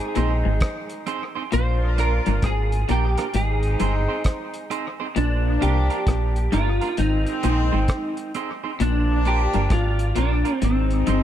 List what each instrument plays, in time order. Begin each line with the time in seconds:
Already playing: horn section G#3 C4 D#4, clean electric guitar G#4
0.15 fingered electric bass A#1, clean electric guitar A#2 C4 D#4 G#4 C5, closed hi-hat
0.45 fingered electric bass G#1, clean electric guitar G#2
0.60 kick, cross-stick, closed hi-hat
0.90 closed hi-hat
1.07 clean electric guitar C4 D#4 G#4 C5, closed hi-hat
1.35 clean electric guitar C4 D#4 G#4 C5
1.52 fingered electric bass A#1, clean electric guitar A#2 C5, horn section A#3 D4 F4, closed hi-hat
1.98 clean electric guitar A#3 D4 F4 A#4, closed hi-hat
2.26 fingered electric bass G1, clean electric guitar G2 A#3 D4 F4 A#4, closed hi-hat
2.42 fingered electric bass G#1, clean electric guitar G#2 G#4, kick, cross-stick, closed hi-hat
2.72 closed hi-hat
2.89 fingered electric bass A#1, clean electric guitar A#2 A#3 D4 F4 G4 A#4, closed hi-hat
3.17 clean electric guitar A#3 D4 F4 A#4, cross-stick, closed hi-hat
3.34 fingered electric bass G#1, clean electric guitar G#2 G#4, horn section G#3 C4 D#4, closed hi-hat
3.63 closed hi-hat
3.80 fingered electric bass G1, clean electric guitar G2 C4 D#4 G#4 C5, closed hi-hat
4.08 clean electric guitar C4 D#4 G#4 C5
4.24 kick, cross-stick, closed hi-hat
4.54 closed hi-hat
4.70 clean electric guitar C4 D#4 G#4 C5, closed hi-hat
5.00 clean electric guitar C4 D#4 G#4 C5
5.16 fingered electric bass A#1, clean electric guitar A#2 D4, horn section F3 A#3 D4, closed hi-hat
5.61 fingered electric bass C2, clean electric guitar C3 A#3 D4 F4 G4 A#4, closed hi-hat
5.90 clean electric guitar A#3 D4 F4 A#4, closed hi-hat
6.07 fingered electric bass A#1, clean electric guitar A#2, kick, cross-stick, closed hi-hat
6.36 closed hi-hat
6.52 fingered electric bass G1, clean electric guitar G2 A#3 D4 F4 A#4, closed hi-hat
6.81 clean electric guitar A#3 D4 F4 A#4, closed hi-hat
6.97 fingered electric bass G#1, clean electric guitar G#2 D#4, horn section D#3 G#3 C4, closed hi-hat
7.27 closed hi-hat
7.43 fingered electric bass A#1, clean electric guitar A#2 C4 D#4 G#4 C5, closed hi-hat
7.72 fingered electric bass G#1, clean electric guitar G#2 C4 D#4 G#4 C5
7.88 kick, cross-stick, closed hi-hat
8.17 closed hi-hat
8.34 clean electric guitar C4 D#4 G#4 C5, closed hi-hat
8.64 clean electric guitar C4 D#4 G#4 C5
8.80 fingered electric bass A#1, clean electric guitar A#2 D4, horn section F3 A#3 D4, closed hi-hat
9.25 clean electric guitar A#3 D4 F4 G4 A#4, closed hi-hat
9.53 fingered electric bass G1, clean electric guitar G2 A#3 D4 F4 A#4, closed hi-hat
9.70 fingered electric bass G#1, clean electric guitar G#2 F4, kick, cross-stick, closed hi-hat
9.99 closed hi-hat
10.15 fingered electric bass A#1, clean electric guitar A#2 A#3 D4 F4 A#4, closed hi-hat
10.45 clean electric guitar A#3 D4 F4 A#4, closed hi-hat
10.61 fingered electric bass G#1, clean electric guitar G#2 C4, horn section G#3 C4 D#4, closed hi-hat
10.90 closed hi-hat
11.07 fingered electric bass G1, clean electric guitar G2 C4 D#4 G#4 C5, closed hi-hat